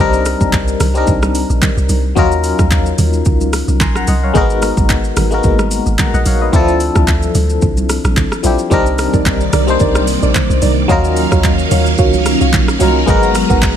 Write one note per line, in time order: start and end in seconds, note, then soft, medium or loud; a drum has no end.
0.00 0.35 C2 loud
0.00 0.75 G3 loud
0.00 0.75 C4 loud
0.00 0.76 D4 loud
0.00 0.76 D#4 loud
0.00 0.77 A#4 loud
0.13 shaker medium
0.25 cross-stick medium
0.25 open hi-hat soft
0.25 shaker medium
0.41 0.75 C2 loud
0.41 kick loud
0.41 high conga medium
0.41 shaker medium
0.53 kick loud
0.53 clap loud
0.53 shaker medium
0.68 shaker medium
0.80 1.04 C2 loud
0.80 cross-stick loud
0.80 open hi-hat medium
0.80 high conga medium
0.80 low conga medium
0.80 shaker loud
0.94 1.81 G3 medium
0.94 1.82 C4 medium
0.94 1.82 D4 medium
0.94 1.83 D#4 medium
0.94 1.83 A#4 loud
0.94 shaker medium
1.07 1.44 C2 loud
1.07 kick loud
1.07 low conga medium
1.07 shaker medium
1.22 cross-stick loud
1.22 high conga medium
1.22 shaker medium
1.35 open hi-hat medium
1.35 shaker loud
1.50 1.60 A#1 loud
1.50 shaker medium
1.62 kick loud
1.62 clap loud
1.62 high conga medium
1.62 low conga medium
1.62 shaker medium
1.77 1.88 C2 medium
1.77 shaker medium
1.89 2.13 C2 medium
1.89 open hi-hat medium
1.89 high conga medium
1.89 shaker loud
2.15 2.53 D#2 loud
2.15 3.04 F#3 loud
2.15 3.04 C#4 loud
2.15 3.05 D#4 loud
2.15 3.05 F4 loud
2.15 3.06 A#4 loud
2.15 kick loud
2.15 low conga medium
2.15 shaker medium
2.32 shaker medium
2.44 open hi-hat medium
2.44 shaker medium
2.59 2.93 D#2 loud
2.59 kick loud
2.59 cross-stick loud
2.59 high conga medium
2.59 shaker medium
2.71 kick loud
2.71 clap loud
2.71 shaker medium
2.86 shaker medium
2.98 3.22 D#2 loud
2.98 open hi-hat medium
2.98 high conga medium
2.98 low conga medium
2.98 shaker loud
3.13 shaker medium
3.25 3.63 C#2 loud
3.25 kick loud
3.25 low conga medium
3.25 shaker medium
3.41 high conga medium
3.41 shaker medium
3.53 cross-stick loud
3.53 open hi-hat medium
3.53 shaker loud
3.68 3.82 C2 medium
3.68 shaker medium
3.80 4.04 A#1 loud
3.80 3.95 G#5 medium
3.80 3.95 A#5 medium
3.80 3.95 C6 medium
3.80 kick loud
3.80 clap loud
3.80 high conga medium
3.80 low conga medium
3.80 shaker medium
3.96 4.07 F#5 medium
3.96 4.07 A#5 medium
3.96 cross-stick medium
3.96 shaker medium
4.07 4.31 C2 loud
4.07 4.23 D#5 medium
4.07 4.22 F#5 medium
4.07 open hi-hat medium
4.07 high conga medium
4.07 shaker loud
4.23 4.49 C#5 medium
4.23 4.49 F5 medium
4.34 4.72 G#1 loud
4.34 5.11 G#3 loud
4.34 4.42 A#3 medium
4.34 5.12 D#4 loud
4.34 5.13 F#4 loud
4.34 5.13 A#4 loud
4.34 kick loud
4.34 low conga medium
4.34 shaker medium
4.41 5.15 B3 loud
4.50 shaker medium
4.62 cross-stick loud
4.62 open hi-hat medium
4.62 shaker medium
4.77 5.12 G#1 loud
4.77 kick loud
4.77 high conga medium
4.77 shaker medium
4.89 kick loud
4.89 clap loud
4.89 shaker medium
5.04 shaker medium
5.17 5.40 G#1 loud
5.17 cross-stick loud
5.17 open hi-hat medium
5.17 high conga medium
5.17 low conga medium
5.17 shaker loud
5.31 6.18 G#3 medium
5.31 5.37 A#3 medium
5.31 6.19 D#4 medium
5.31 6.19 F#4 medium
5.31 6.00 A#4 loud
5.31 shaker medium
5.38 6.22 B3 medium
5.43 5.81 G#1 loud
5.43 kick loud
5.43 low conga medium
5.43 shaker medium
5.59 cross-stick loud
5.59 high conga medium
5.59 shaker medium
5.71 open hi-hat medium
5.71 shaker loud
5.86 5.97 G#1 medium
5.86 shaker medium
5.99 6.13 F#5 medium
5.99 6.13 A#5 medium
5.99 kick medium
5.99 clap loud
5.99 high conga medium
5.99 low conga medium
5.99 shaker medium
6.14 6.24 A#1 medium
6.14 6.26 D#5 medium
6.14 6.26 F#5 medium
6.14 shaker medium
6.25 6.50 A#1 loud
6.25 6.41 C#5 medium
6.25 6.40 F5 medium
6.25 open hi-hat medium
6.25 high conga medium
6.25 shaker loud
6.42 6.67 B4 medium
6.42 6.67 D#5 medium
6.52 6.90 D2 loud
6.52 6.60 E3 medium
6.52 7.41 C4 loud
6.52 7.41 D4 loud
6.52 7.42 E4 loud
6.52 7.42 A4 loud
6.52 kick loud
6.52 low conga medium
6.52 shaker medium
6.59 7.44 F3 loud
6.68 shaker medium
6.80 open hi-hat soft
6.80 shaker medium
6.95 7.30 D2 loud
6.95 kick loud
6.95 cross-stick loud
6.95 high conga medium
6.95 shaker medium
7.07 kick loud
7.07 clap loud
7.07 shaker medium
7.22 high conga medium
7.22 shaker medium
7.35 7.59 D2 loud
7.35 open hi-hat medium
7.35 high conga medium
7.35 low conga medium
7.35 shaker loud
7.50 shaker medium
7.62 7.99 C2 loud
7.62 kick loud
7.62 low conga medium
7.62 shaker medium
7.77 high conga medium
7.77 shaker medium
7.89 cross-stick loud
7.89 open hi-hat medium
7.89 shaker loud
8.04 8.15 A#1 loud
8.04 cross-stick loud
8.04 high conga medium
8.04 shaker medium
8.17 8.30 A1 loud
8.17 kick loud
8.17 clap loud
8.17 high conga medium
8.17 low conga medium
8.17 shaker medium
8.32 cross-stick loud
8.32 shaker medium
8.43 8.57 A#1 loud
8.43 8.66 F3 medium
8.43 8.66 C4 medium
8.43 8.67 D4 medium
8.43 8.67 E4 medium
8.43 8.68 G4 loud
8.43 open hi-hat medium
8.43 high conga medium
8.43 shaker loud
8.59 shaker medium
8.70 9.08 C2 loud
8.70 10.87 C3 medium
8.70 10.87 D#3 loud
8.70 9.48 G3 loud
8.70 10.87 G3 medium
8.70 10.87 A#3 medium
8.70 9.48 C4 loud
8.70 9.48 D4 loud
8.70 8.84 D#4 loud
8.70 9.49 D#4 loud
8.70 8.84 A#4 medium
8.70 9.49 A#4 loud
8.70 10.87 D5 medium
8.70 8.85 D5 loud
8.70 kick loud
8.70 low conga medium
8.70 shaker medium
8.86 shaker medium
8.98 cross-stick loud
8.98 open hi-hat medium
8.98 shaker medium
9.13 9.48 C2 loud
9.13 9.24 D#4 medium
9.13 9.24 A#4 medium
9.13 9.24 D5 medium
9.13 kick loud
9.13 high conga medium
9.13 shaker medium
9.26 kick loud
9.26 clap loud
9.26 shaker medium
9.41 shaker medium
9.53 9.77 C2 loud
9.53 9.66 D#4 medium
9.53 9.66 A#4 medium
9.53 9.66 D5 medium
9.53 cross-stick loud
9.53 open hi-hat medium
9.53 high conga medium
9.53 low conga medium
9.53 shaker loud
9.67 10.54 G3 medium
9.67 10.55 C4 medium
9.67 10.55 D4 medium
9.67 10.55 D#4 medium
9.67 10.56 C5 loud
9.67 shaker medium
9.80 10.17 C2 loud
9.80 10.19 D#4 loud
9.80 10.19 A#4 medium
9.80 10.19 D5 loud
9.80 kick loud
9.80 low conga medium
9.80 shaker medium
9.95 cross-stick loud
9.95 high conga medium
9.95 shaker medium
10.07 open hi-hat medium
10.07 shaker loud
10.22 10.33 A#1 loud
10.22 10.33 D#4 medium
10.22 10.33 A#4 medium
10.22 10.34 D5 medium
10.22 shaker medium
10.35 kick medium
10.35 clap loud
10.35 high conga medium
10.35 low conga medium
10.35 shaker medium
10.50 10.60 C2 loud
10.50 shaker medium
10.62 10.86 C2 medium
10.62 10.75 D#4 medium
10.62 10.75 A#4 medium
10.62 10.75 D5 medium
10.62 open hi-hat medium
10.62 high conga medium
10.62 shaker loud
10.88 11.26 D#2 loud
10.88 13.05 D#3 medium
10.88 11.77 F#3 loud
10.88 13.77 F#3 medium
10.88 13.05 A#3 medium
10.88 11.77 C#4 loud
10.88 13.05 C#4 medium
10.88 11.77 D#4 loud
10.88 11.78 F4 loud
10.88 11.02 F#4 medium
10.88 11.78 A#4 loud
10.88 11.03 C#5 medium
10.88 13.05 F5 medium
10.88 11.03 F5 loud
10.88 kick loud
10.88 low conga medium
10.88 shaker medium
11.04 shaker medium
11.17 open hi-hat medium
11.17 shaker medium
11.31 11.66 D#2 loud
11.31 11.42 F#4 medium
11.31 11.42 C#5 medium
11.31 11.43 F5 medium
11.31 kick loud
11.31 cross-stick loud
11.31 high conga medium
11.31 shaker medium
11.44 kick loud
11.44 clap loud
11.44 shaker medium
11.59 shaker medium
11.71 11.95 D#2 loud
11.71 11.84 F#4 medium
11.71 11.84 C#5 medium
11.71 11.85 F5 medium
11.71 open hi-hat medium
11.71 high conga medium
11.71 low conga medium
11.71 shaker loud
11.86 shaker medium
11.98 12.35 C#2 loud
11.98 12.37 F#4 loud
11.98 12.37 C#5 medium
11.98 12.37 F5 loud
11.98 kick loud
11.98 low conga medium
11.98 shaker medium
12.14 high conga medium
12.14 shaker medium
12.26 cross-stick loud
12.26 open hi-hat medium
12.26 shaker loud
12.41 12.55 C2 medium
12.41 12.51 F#4 medium
12.41 12.52 C#5 medium
12.41 12.52 F5 medium
12.41 shaker medium
12.53 12.77 A#1 loud
12.53 kick loud
12.53 clap loud
12.53 high conga medium
12.53 low conga medium
12.53 shaker medium
12.68 cross-stick loud
12.68 shaker medium
12.79 13.04 C2 medium
12.79 13.02 F#3 medium
12.79 13.02 C#4 medium
12.79 13.03 D#4 medium
12.79 13.03 F4 medium
12.79 12.93 F#4 medium
12.79 13.04 A#4 loud
12.79 12.94 C#5 medium
12.79 12.94 F5 medium
12.79 open hi-hat medium
12.79 high conga medium
12.79 shaker loud
13.06 13.44 G#1 loud
13.06 13.77 G#3 loud
13.06 13.77 G#3 medium
13.06 13.77 B3 loud
13.06 13.77 B3 medium
13.06 13.77 D#4 medium
13.06 13.77 D#4 loud
13.06 13.77 F#4 loud
13.06 13.21 A#4 loud
13.06 13.77 A#4 loud
13.06 13.21 B4 medium
13.06 13.21 F#5 loud
13.06 13.77 A#5 medium
13.06 kick loud
13.06 low conga medium
13.06 shaker medium
13.23 shaker medium
13.35 cross-stick loud
13.35 open hi-hat medium
13.35 shaker medium
13.50 13.77 G#1 loud
13.50 13.60 A#4 medium
13.50 13.61 B4 medium
13.50 13.61 F#5 medium
13.50 kick loud
13.50 high conga medium
13.50 shaker medium
13.62 kick loud
13.62 clap loud
13.62 shaker medium